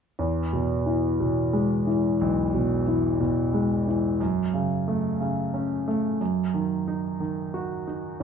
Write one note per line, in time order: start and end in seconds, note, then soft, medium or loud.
0.19 2.16 E2 soft
0.53 1.19 B2 soft
0.86 1.85 E3 soft
1.20 2.50 B2 soft
1.53 2.83 G#3 soft
1.87 2.86 E3 soft
2.21 4.17 B1 soft
2.54 3.19 B2 soft
2.88 3.86 E3 soft
3.20 4.17 B2 soft
3.54 4.18 G#3 soft
3.87 4.20 E3 soft
4.20 6.17 F#2 soft
4.54 5.19 C#3 soft
4.88 5.86 A3 soft
5.20 6.17 C#3 soft
5.54 6.19 C#4 soft
5.88 6.20 A3 soft
6.21 8.17 F#2 soft
6.54 7.19 D#3 soft
6.88 7.86 D#4 soft
7.20 8.18 D#3 soft
7.54 8.19 F#4 soft
7.87 8.20 D#4 soft